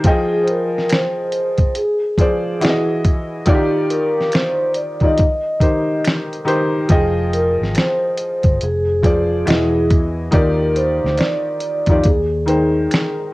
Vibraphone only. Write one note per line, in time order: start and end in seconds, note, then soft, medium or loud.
0.07 0.44 G#4 medium
0.43 0.48 C5 medium
0.49 0.92 A#4 loud
0.91 1.72 C5 loud
1.77 3.01 G#4 medium
3.47 3.91 G4 medium
3.90 4.30 A#4 medium
4.34 4.73 C5 loud
4.76 5.04 D5 medium
5.04 6.01 D#5 medium
6.91 7.30 G#4 medium
7.34 7.53 A#4 loud
7.76 8.64 C5 loud
8.63 9.87 G#4 medium
10.34 10.77 A#4 medium
10.76 11.20 C5 loud
11.18 12.07 D5 loud
12.04 13.29 G#4 medium